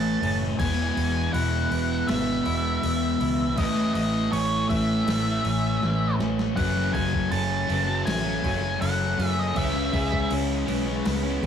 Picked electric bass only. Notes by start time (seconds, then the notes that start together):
Already playing: A1
0.22 F#1
0.60 E1
0.97 E1
1.34 E1
1.71 E1
2.09 G#1
2.46 E1
2.84 E1
3.21 C#2
3.58 A1
3.95 A1
4.33 A1
4.70 A1
5.07 A1
5.45 A1
5.83 A1
6.20 A1
6.57 F#1
6.94 F#1
7.32 F#1
7.70 F#1
8.07 A1
8.44 F#1
8.82 F#1
9.19 F#2
9.56 C#2
9.93 C#2
10.31 C#2
10.69 B1
11.06 C#2
11.43 E2